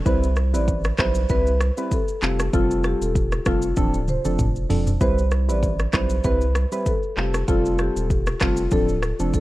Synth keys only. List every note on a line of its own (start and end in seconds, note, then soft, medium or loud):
0.06 0.27 G3 loud
0.06 0.27 C4 medium
0.06 0.27 E4 medium
0.06 0.27 B4 loud
0.53 0.73 G3 medium
0.53 0.73 C4 medium
0.53 0.73 E4 medium
0.53 0.73 B4 medium
0.98 1.20 G3 medium
0.98 1.20 C4 medium
0.98 1.20 E4 medium
0.98 1.20 B4 medium
1.29 1.51 G3 medium
1.29 1.51 C4 medium
1.29 1.51 E4 medium
1.29 1.51 B4 loud
1.77 1.97 G3 medium
1.77 1.97 C4 medium
1.77 1.97 E4 medium
1.77 1.97 B4 medium
2.22 2.44 G3 medium
2.22 2.44 C4 medium
2.22 2.44 F4 medium
2.22 2.44 A4 medium
2.53 3.11 G3 loud
2.53 3.11 C4 medium
2.53 3.11 F4 medium
2.53 3.11 A4 loud
3.46 3.67 G3 medium
3.46 3.67 C4 medium
3.46 3.68 F4 medium
3.46 3.68 A4 medium
3.77 3.98 F3 loud
3.77 3.98 C4 medium
3.77 3.98 D4 medium
3.77 3.99 A4 loud
4.25 4.44 F3 medium
4.25 4.44 C4 medium
4.25 4.44 D4 medium
4.25 4.44 A4 medium
4.70 4.91 F3 medium
4.70 4.91 C4 medium
4.70 4.91 D4 medium
4.70 4.91 A4 medium
5.01 5.22 G3 loud
5.01 5.22 C4 medium
5.01 5.22 E4 medium
5.01 5.22 B4 loud
5.48 5.68 G3 medium
5.48 5.68 C4 medium
5.48 5.68 E4 medium
5.48 5.68 B4 medium
5.93 6.15 G3 medium
5.93 6.15 C4 medium
5.93 6.15 E4 medium
5.93 6.15 B4 medium
6.24 6.46 G3 loud
6.24 6.46 C4 medium
6.24 6.46 E4 medium
6.24 6.46 B4 loud
6.72 6.91 G3 medium
6.72 6.92 C4 medium
6.72 6.92 E4 medium
6.72 6.92 B4 medium
7.17 7.38 G3 medium
7.17 7.38 C4 medium
7.17 7.39 F4 medium
7.17 7.39 A4 medium
7.48 8.05 G3 loud
7.48 8.06 C4 medium
7.48 8.06 F4 medium
7.48 8.06 A4 loud
8.41 8.62 G3 medium
8.41 8.62 C4 medium
8.41 8.62 F4 medium
8.41 8.62 A4 medium
8.72 8.93 F3 loud
8.72 8.93 C4 medium
8.72 8.93 D4 medium
8.72 8.93 A4 loud
9.20 9.39 F3 medium
9.20 9.39 C4 medium
9.20 9.39 D4 medium
9.20 9.39 A4 medium